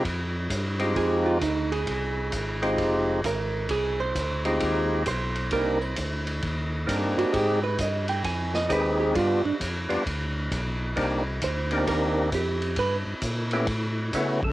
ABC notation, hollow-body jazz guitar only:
X:1
M:4/4
L:1/8
Q:"Swing" 1/4=132
K:Fdor
V:1 name="Hollow-body jazz guitar"
z4 A F E A- | A4 z2 B2 | A c2 z3 c2 | B c2 z4 ^F |
G =B e g a e B G | F D z6 | z2 c2 B2 G2 | =B z6 z |]